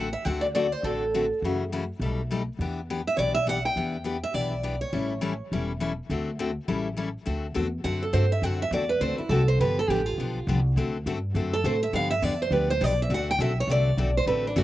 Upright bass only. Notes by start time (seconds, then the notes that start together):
Already playing: A1
0.25 D2
0.83 A1
1.42 F#2
2.00 B1
2.59 E2
3.18 B1
3.76 E2
4.34 B1
4.93 A1
5.52 E1
6.10 D2
6.68 A1
7.27 D2
7.56 E2
7.84 F#2
8.13 G2
8.42 F#2
8.71 E2
9.00 D2
9.18 muted upright bass stroke
9.29 C2
9.59 G1
9.88 A1
10.18 B1
10.47 C2
10.76 D2
11.06 G2
11.35 F#2
11.64 A2
11.93 G2
12.22 E2
12.51 D2
12.81 B1
13.10 D2
13.39 B1
13.67 C2
13.97 B1
14.26 A1
14.56 G1